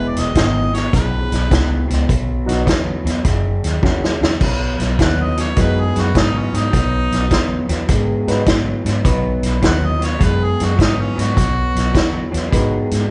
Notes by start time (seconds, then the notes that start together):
Already playing: E1 E2 B2 G#3 B3 E4 G#4
0.08 D5
0.16 E1 D#5, snare, closed hi-hat
0.35 G#1 E2 B2, kick, snare, closed hi-hat
0.74 E2 B2 C#5, snare, closed hi-hat
0.93 B1 E2 C#3 B4, kick, snare, closed hi-hat
1.32 B1, snare, closed hi-hat
1.51 C#2 E2 B2, kick, snare, closed hi-hat
1.88 C#2 E2 B2, snare, closed hi-hat
2.08 B1 B2 F#3, kick, closed hi-hat
2.46 B1 F#3 B3 D#4 F#4, closed hi-hat
2.50 snare
2.66 E2 B2 F#3, kick, snare, closed hi-hat
3.05 E2 B2 F#3, snare, closed hi-hat
3.24 F#1 F#2 C#3, kick, snare, closed hi-hat
3.64 D#2, snare, closed hi-hat
3.83 E2 F#2 C#3 F#3 A#3 C#4 F#4, kick, snare
4.04 snare
4.21 E2 F#2 C#3, snare
4.41 B1 B2 F#3, kick, snare, crash
4.79 B1, snare, closed hi-hat
4.99 D#2 B2 F#3 F#5, kick, snare, closed hi-hat
5.22 D#5
5.37 B2 F#3 C#5, snare, closed hi-hat
5.56 F#2 B2 F#3 G#3 B3 D#4 F#4 B4, kick, snare, closed hi-hat
5.60 B4
5.81 G#4
5.96 F#2, snare, closed hi-hat
6.00 F#4
6.14 G#2 B2 F#3, kick, snare, closed hi-hat
6.19 D#4
6.38 C#4
6.53 G#2 B2 F#3 D#4, snare, closed hi-hat
6.72 B1 B2 F#3, kick, snare, closed hi-hat
7.11 B1, snare, closed hi-hat
7.30 E2 B2 F#3, kick, snare, closed hi-hat
7.69 E2 B2 F#3, snare, closed hi-hat
7.88 G#2 B2 G#3, kick, snare, closed hi-hat
8.27 G#2 F#3 B3 D#4 F#4 B4, snare, closed hi-hat
8.45 G#2 B2 F#3, kick, snare, closed hi-hat
8.85 G#2 B2 F#3, snare, closed hi-hat
9.04 B1 B2 F#3 B3 D#4 F#4 B4, kick, snare, closed hi-hat
9.43 B1, snare, closed hi-hat
9.62 D#2 B2 F#3 F#5, kick, snare, closed hi-hat
9.85 D#5
10.00 B2 F#3, snare, closed hi-hat
10.04 C#5
10.19 F#2 B2 G#3, kick, snare, closed hi-hat
10.24 B4
10.44 G#4
10.60 F#2, snare, closed hi-hat
10.64 F#4
10.77 G#2 B2 F#3, kick, closed hi-hat
10.81 D#4, snare
11.00 C#4
11.16 G#2 B2 F#3, closed hi-hat
11.20 F#4, snare
11.36 B1 B2 F#3, kick, snare, closed hi-hat
11.75 B1, snare, closed hi-hat
11.93 E2 B2 F#3, kick, snare, closed hi-hat
12.32 E2 B2 F#3, snare, closed hi-hat
12.50 G#2 B2 F#3 G#3 B3 D#4 F#4 B4, kick, closed hi-hat
12.54 snare
12.91 G#2, snare, closed hi-hat